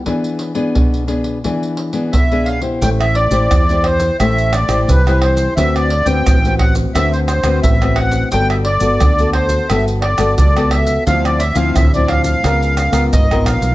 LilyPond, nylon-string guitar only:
\new Staff \with { instrumentName = "Nylon-string guitar" } { \time 4/4 \key a \minor \tempo 4 = 87 << { <b d' gis'>8. <b d' gis'>8. <b d' gis'>8 <b d' gis'>8. <b d' gis'>8 <b d' gis'>8 <e' g' c''>16~ | <e' g' c''>8. <e' g' c''>8 <e' g' c''>8. <e' g' c''>8 r16 <e' g' c''>8 <e' g' c''>8. | <c' fis' b'>8 r16 <c' fis' b'>8 <c' fis' b'>8. <c' fis' b'>8 r16 <c' fis' b'>8 <c' fis' b'>8. | <b fis' a'>8 r16 <b fis' a'>8 <b fis' a'>8. <b fis' a'>8 r16 <b fis' a'>8 <b fis' a'>8. |
<f c' e'>8 r16 <f c' e'>8 <f c' e'>8. <b eis' ais'>8. <b eis' ais'>8 <b eis' ais'>8. | } \\ { e4 b,4 e4 b,4 | a4 e4 a4 e4 | d4 a,4 d4 a,4 | g4 d4 g4 r4 |
d4 a,4 cis4 gis,4 | } >> }